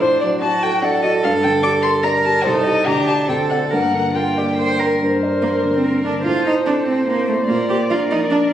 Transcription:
0.01 A2 D4 C5
0.21 F#3 D5
0.41 D4 F#4 A5
0.63 A4 G5
0.82 D4 A4 D5 F#5
1.03 F#4 D#5
1.23 G2 F5
1.43 D3 G5
1.63 D4 G4 D6
1.82 A#4 C6
2.03 D4 A#4 D5 A#5
2.24 G4 A5
2.44 C2 D#4 A4 C5
2.65 G4 D#5
2.86 D2 D4 G4 A#5
3.07 G4 D5 A5
3.28 D2 C4 A4 G5
3.50 A4 D5 F#5
3.71 G2 A#3 A#4 F#5
3.93 D3
4.15 A#3 F4 A#4 G5
4.37 G4 D5
4.58 A#4 C5
4.79 A#3 A#4
5.01 G2 A#4 C5
5.23 D5
5.42 A#3
5.64 D3
5.75 C4
5.84 A#3 A#4
6.05 D3 D4
6.25 A2 F4 A4 C5
6.46 D#4 C5
6.66 C4 D4 A4
6.86 A3 C4
7.07 A#3 C4 C5
7.27 A3
7.48 A#2 A#3 D5
7.69 G4 A#4
7.90 D4 F4 A#4
8.10 F3 D#4
8.30 D4

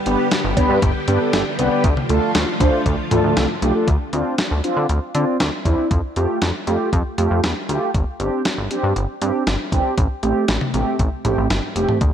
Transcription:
Already playing: D3 G3 B3 G4
0.06 G1 B3 D4 G4 B4, closed hi-hat
0.31 snare, closed hi-hat
0.44 G1
0.57 B3 D4 G4 B4, kick, closed hi-hat, cowbell
0.70 G2
0.82 G1, kick, closed hi-hat
1.08 G2 B3 D4 G4 B4, closed hi-hat
1.20 B3 D4 G4 A4
1.33 G1, snare, closed hi-hat
1.58 C2 B3 D4 G4 B4, closed hi-hat
1.71 B3 D4 G4 B4
1.84 D2 F3 A3 F4, kick, closed hi-hat
1.97 mid tom
2.09 D2 A3 D4 F4 A4, closed hi-hat
2.35 D2, snare, closed hi-hat
2.60 D2 A3 D4 F4 C5, kick, closed hi-hat
2.86 D2, kick, closed hi-hat
3.11 D2 A3 D4 F4 A4, closed hi-hat, mid tom
3.24 D2 A3 D4 F4 A4
3.37 C2, snare, closed hi-hat
3.62 B1 A3 D4 F4 G4, closed hi-hat
3.75 A3 D4 F4 A4
3.88 D2, kick, closed hi-hat
4.13 D2 C4 D4 F4, closed hi-hat
4.38 snare, closed hi-hat
4.51 D2
4.64 C4 D4 F4, closed hi-hat
4.77 D3
4.89 D2, closed hi-hat
5.15 D3 C4 D4 F4, closed hi-hat
5.40 D2, snare, closed hi-hat
5.65 E2 C4 D4 E4, kick, closed hi-hat
5.91 F2, kick, closed hi-hat
6.16 F2 A3 F4 G4, closed hi-hat
6.42 F2, snare, closed hi-hat
6.67 F2 A3 F4 G4, closed hi-hat
6.93 F2, kick, closed hi-hat
7.18 F2 A3 F4 G4, closed hi-hat
7.31 F2
7.44 E2, snare, closed hi-hat
7.69 D2 A3 F4 G4, closed hi-hat
7.94 G1, kick, closed hi-hat
8.20 G1 C4 D4 G4, closed hi-hat
8.45 snare, closed hi-hat
8.58 G1
8.70 C4 D4 G4, closed hi-hat
8.83 G2
8.96 G1, closed hi-hat
9.21 G2 C4 D4 G4, closed hi-hat
9.47 G1, snare, closed hi-hat
9.72 G1 C4 D4 G4, kick, closed hi-hat
9.98 A1, kick, closed hi-hat
10.23 A1 A3 C4 G4, closed hi-hat
10.48 A1, snare, closed hi-hat
10.61 mid tom
10.74 A1 A3 C4 G4, closed hi-hat
10.99 A1, kick, closed hi-hat
11.25 A1 A3 C4 G4, closed hi-hat, mid tom
11.37 A1
11.50 G1, snare, closed hi-hat
11.76 F1 A3 C4 G4, closed hi-hat
11.89 mid tom
12.01 D2, kick, closed hi-hat

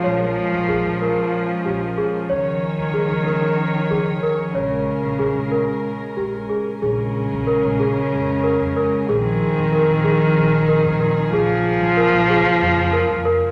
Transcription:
Already playing: F3 G#3 C#4 A#4
0.04 A#1 C#5
0.53 A#1
0.69 A#1 G#4
0.85 A#1
1.02 A#4
1.65 A#1 G4
1.98 G#4
2.29 C#2 D#3 F3 C#5
2.78 C#2
2.94 C#2 G#4
3.11 C#2
3.26 A#4
3.90 C#2 G#4
4.23 A#4
4.54 A#1 C#3 G#3 A#4 C#5
5.03 A#1
5.19 A#1 G#4
5.35 A#1
5.52 A#4
6.17 A#1 G4
6.49 G#4
6.82 A#1 C#3 G#3 C#4 G#4 A#4
7.31 A#1
7.47 A#4
7.64 A#1
7.79 G#4
8.12 F2
8.44 A#4
8.61 F2
8.77 A#4
9.07 A#1 D#3 F3 C4 G#4
9.57 F2
9.72 A#4
9.89 A#1
10.04 G#4
10.37 A#1
10.69 A#4
10.85 A#2
11.00 A#4
11.31 A#1 C#3 F3 A#3 G#4
11.80 A#1
11.97 A#4
12.13 A#1
12.30 G#4
12.61 F2
12.93 A#4
13.10 F2
13.25 A#4

